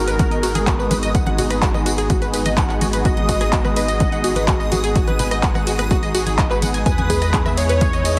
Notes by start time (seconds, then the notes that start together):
Already playing: G#1 G#3 B3 D#4 F#4 G#4 A#4 D#6
0.08 B4, closed hi-hat, tambourine
0.19 F#4, kick, closed hi-hat, tambourine, high conga
0.31 D#5, closed hi-hat, tambourine
0.43 F#4, open hi-hat, ride, tambourine
0.55 G#4, closed hi-hat, tambourine, high conga
0.67 F#4, kick, clap, closed hi-hat, tambourine
0.79 B4, tambourine
0.91 B4, open hi-hat, ride, tambourine, high conga
1.03 D#5, closed hi-hat, tambourine
1.15 F#5, kick, closed hi-hat, tambourine
1.26 F#5, closed hi-hat, high conga
1.38 F#4, open hi-hat, ride, tambourine, low conga
1.50 B4, cross-stick, closed hi-hat, tambourine
1.62 F#4, kick, clap, closed hi-hat, tambourine
1.74 D#5, cross-stick, tambourine, high conga
1.86 F#4, open hi-hat, ride, tambourine
1.98 G#4, closed hi-hat, tambourine
2.10 F#4, kick, closed hi-hat, tambourine, high conga
2.22 B4, closed hi-hat, tambourine
2.34 B4, open hi-hat, ride, tambourine
2.46 D#5, closed hi-hat, tambourine, high conga
2.57 F#5, kick, clap, closed hi-hat, tambourine
2.69 F#5, clap, tambourine
2.81 F#4, open hi-hat, ride, tambourine, high conga
2.93 B4, closed hi-hat, tambourine
3.05 F#4 D#5, kick, closed hi-hat, tambourine
3.17 D#5, closed hi-hat, high conga
3.29 F#4, kick, open hi-hat, ride, tambourine, low conga
3.41 G#4, cross-stick, closed hi-hat, tambourine
3.53 F#4, kick, clap, closed hi-hat, tambourine
3.64 B4, cross-stick, tambourine, high conga
3.76 B4 D#5, open hi-hat, ride, tambourine
3.88 D#5, closed hi-hat, tambourine
4.00 F#5, kick, closed hi-hat, tambourine, high conga
4.12 F#5, closed hi-hat, tambourine
4.24 F#4, open hi-hat, ride, tambourine
4.35 B4, closed hi-hat, tambourine, high conga
4.48 F#4, kick, clap, closed hi-hat, tambourine
4.60 D#5, tambourine
4.72 F#4, open hi-hat, ride, tambourine, high conga
4.84 G#4, closed hi-hat, tambourine
4.96 F#4, kick, closed hi-hat, tambourine
5.07 B4, closed hi-hat, high conga
5.19 B4, open hi-hat, ride, tambourine, low conga
5.31 D#5, cross-stick, closed hi-hat, tambourine
5.43 F#5, kick, clap, closed hi-hat, tambourine
5.54 F#5, cross-stick, tambourine, high conga
5.67 F#4, open hi-hat, ride, tambourine
5.79 B4, cross-stick, closed hi-hat, tambourine
5.91 F#4, kick, closed hi-hat, tambourine, high conga
6.03 D#5, closed hi-hat, tambourine
6.15 F#4, open hi-hat, ride, tambourine
6.26 G#4, closed hi-hat, tambourine, high conga
6.38 D#5, kick, clap, closed hi-hat, tambourine
6.50 B4, clap, tambourine
6.62 F#5, open hi-hat, ride, tambourine, high conga
6.74 G#5, closed hi-hat, tambourine
6.86 E2 G#3 B3 D#4 E4 B4 G#5, kick, closed hi-hat, tambourine
6.98 G#5, closed hi-hat, high conga
7.10 G#4, kick, open hi-hat, ride, tambourine, low conga
7.22 D#5, cross-stick, closed hi-hat, tambourine
7.34 G#4, kick, clap, closed hi-hat, tambourine
7.46 E5, cross-stick, tambourine, high conga
7.57 G#4 C#5, open hi-hat, ride, tambourine
7.69 B4, closed hi-hat, tambourine
7.81 G#4, kick, closed hi-hat, tambourine, high conga
7.93 D#5, closed hi-hat, tambourine
8.05 D#5, open hi-hat, ride, tambourine